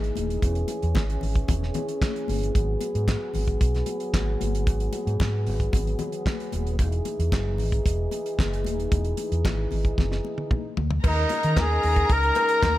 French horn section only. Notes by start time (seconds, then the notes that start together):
Already playing: E3 D#4 G#4
0.43 C#4
2.54 F#3 B3
6.79 E3 D#4 G#4
11.05 C#3 G#3 D#4